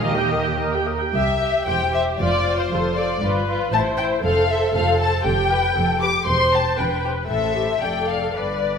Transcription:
0.02 D#2 D#3 G4 A#4 D#5
0.17 G4 G5
0.33 A#4 D#5
0.45 G4 G5
0.59 A#4 D#5
0.74 G4 G5
0.87 A#4 D#5
1.02 G4 G5
1.15 C2 G4 E5
1.43 G4 E5
1.67 E1 E2 G4 C5 G5
1.95 G4 C5 E5
2.19 F1 F2 F4 C5 D5
2.46 F4 C5
2.58 C5
2.71 F1 F2 F4 A4 C5
2.97 F4 A4 C5 D5
3.22 G1 G2 F4 B4
3.50 F4 B4
3.73 A1 A2 E4 C5 A5
3.97 E4 C5 G5
4.24 F1 F2 A4 C5 F5
4.51 A4 C5 E5
4.75 F1 F2 A4 C5 F5
5.01 A4 C5 A5
5.25 F1 F2 G4 G5
5.51 G4 B4
5.76 F1 F2 A4
6.01 G4 B4 D6
6.27 E1 E2 C5 C6
6.54 G4 C5 A5
6.77 E1 E2 B4 G5
7.05 G4 C5
7.29 A1 A2 A4 C5 E5
7.55 G4
7.81 F1 F2 A4 D5 G5
8.09 F5
8.36 G1 G2 B4 D5

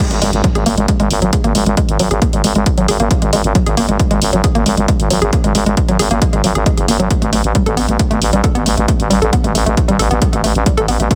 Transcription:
0.11 G#1 G#3, closed hi-hat
0.22 G#1 G#3, open hi-hat
0.33 G#1, closed hi-hat
0.44 F#3, kick, closed hi-hat
0.55 G#1 G#4, closed hi-hat
0.66 G#1 A#3, open hi-hat
0.77 G#1 G#3, closed hi-hat
0.88 G#3, kick, closed hi-hat
1.00 G#1 G#3, closed hi-hat
1.11 G#1, open hi-hat
1.22 G#1 F#3, closed hi-hat
1.33 G#4, kick, closed hi-hat
1.44 G#1 A#3, closed hi-hat
1.55 G#1 G#3, open hi-hat
1.66 G#1 G#3, closed hi-hat
1.77 G#3, kick, closed hi-hat
1.89 G#1, closed hi-hat
1.99 G#1 F#3, open hi-hat
2.11 G#1 G#4, closed hi-hat
2.22 A#3, kick, closed hi-hat
2.33 G#1 G#3, closed hi-hat
2.44 G#1 G#3, open hi-hat
2.55 G#1 G#3, closed hi-hat
2.66 kick, closed hi-hat
2.78 G#1 F#3, closed hi-hat
2.88 G#1 G#4, open hi-hat
3.00 G#1 A#3, closed hi-hat
3.11 G#3, kick, closed hi-hat
3.22 G#1 G#3, closed hi-hat
3.33 G#1 G#3, open hi-hat
3.44 G#1, closed hi-hat
3.55 F#3, kick, closed hi-hat
3.66 G#1 G#4, closed hi-hat
3.77 G#1 A#3, open hi-hat
3.89 G#1 G#3, closed hi-hat
3.99 G#3, kick, closed hi-hat
4.11 G#1 G#3, closed hi-hat
4.22 G#1, open hi-hat
4.33 G#1 F#3, closed hi-hat
4.44 G#4, kick, closed hi-hat
4.55 G#1 A#3, closed hi-hat
4.66 G#1 G#3, open hi-hat
4.77 G#1 G#3, closed hi-hat
4.88 G#3, kick, closed hi-hat
5.00 G#1, closed hi-hat
5.10 G#1 F#3, open hi-hat
5.22 G#1 G#4, closed hi-hat
5.33 A#3, kick, closed hi-hat
5.44 G#1 G#3, closed hi-hat
5.55 G#1 G#3, open hi-hat
5.66 G#1 G#3, closed hi-hat
5.77 kick, closed hi-hat
5.88 G#1 F#3, closed hi-hat
5.99 G#1 G#4, open hi-hat
6.11 G#1 A#3, closed hi-hat
6.22 G#3, kick, closed hi-hat
6.33 G#1 G#3, closed hi-hat
6.44 G#1 F#3, open hi-hat
6.55 G#1 G#4, closed hi-hat
6.66 G#3, kick, closed hi-hat
6.77 F#1 G#4, closed hi-hat
6.88 G#1 A#3, open hi-hat
7.00 G#1 F#3, closed hi-hat
7.10 A3, kick, closed hi-hat
7.22 A1 A3, closed hi-hat
7.33 A1 A3, open hi-hat
7.44 A1, closed hi-hat
7.55 G3, kick, closed hi-hat
7.66 A1 A4, closed hi-hat
7.77 A1 B3, open hi-hat
7.88 A1 A3, closed hi-hat
7.99 A3, kick, closed hi-hat
8.11 A1 A3, closed hi-hat
8.22 A1, open hi-hat
8.33 A1 G3, closed hi-hat
8.44 A4, kick, closed hi-hat
8.55 A1 B3, closed hi-hat
8.66 A1 A3, open hi-hat
8.77 A1 A3, closed hi-hat
8.88 A3, kick, closed hi-hat
9.00 A1, closed hi-hat
9.10 A1 G3, open hi-hat
9.22 A1 A4, closed hi-hat
9.33 B3, kick, closed hi-hat
9.44 A1 A3, closed hi-hat
9.55 A1 A3, open hi-hat
9.66 A1 A3, closed hi-hat
9.77 kick, closed hi-hat
9.88 A1 G3, closed hi-hat
9.99 A1 A4, open hi-hat
10.11 A1 B3, closed hi-hat
10.21 A3, kick, closed hi-hat
10.33 A1 A3, closed hi-hat
10.44 A1 A3, open hi-hat
10.55 A1, closed hi-hat
10.66 G3, kick, closed hi-hat
10.77 A1 A4, closed hi-hat
10.88 A1 B3, open hi-hat
11.00 A1 A3, closed hi-hat
11.11 A3, kick, closed hi-hat

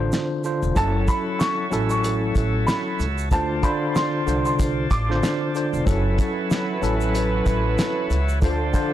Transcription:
0.00 D3 D4 F4 C5
0.12 snare, closed hi-hat, shaker
0.44 D3 D4 F4 C5, shaker
0.63 E1, shaker
0.74 F#1 F#3 C#4 E4 F#4 A4 C#5 E5 A5, kick, closed hi-hat, shaker
1.08 B5, kick, closed hi-hat, shaker
1.39 C#6, snare, closed hi-hat, shaker
1.71 A1 F#3 C#4 E4 A4, shaker
1.90 C#6, shaker
2.04 closed hi-hat, shaker
2.35 A1, kick, closed hi-hat, shaker
2.67 B5, snare, closed hi-hat, shaker
3.00 C#2, shaker
3.01 shaker
3.18 shaker
3.31 D2 D3 D4 F4 C5 D5 A5, kick, closed hi-hat, shaker
3.62 D3 D4 F4 C5 B5, kick, closed hi-hat, shaker
3.96 C6, snare, closed hi-hat, shaker
4.26 C2 D3 D4 F4 C5, shaker
4.45 C6, shaker
4.59 kick, closed hi-hat, shaker
4.91 A1 D6, kick, closed hi-hat, shaker
5.09 D3 D4 F4 C5, snare
5.23 snare, closed hi-hat, shaker
5.55 D3 D4 F4 C5, shaker
5.73 E1, shaker
5.85 F#1 F#3 C#4 E4 F#4 A4 B4 C#5 E5, kick, closed hi-hat, shaker
6.19 kick, closed hi-hat, shaker
6.51 snare, closed hi-hat, shaker
6.81 A1 F#3 C#4 E4 A4, shaker
7.01 shaker
7.15 closed hi-hat, shaker
7.46 A1, kick, closed hi-hat, shaker
7.78 snare, closed hi-hat, shaker
8.10 C#2, shaker
8.12 shaker
8.29 shaker
8.42 D2 D3 F3 D4 F4 A4 C5 D5 A5, kick, closed hi-hat, shaker
8.73 D3 D4 F4 C5, kick, closed hi-hat, shaker

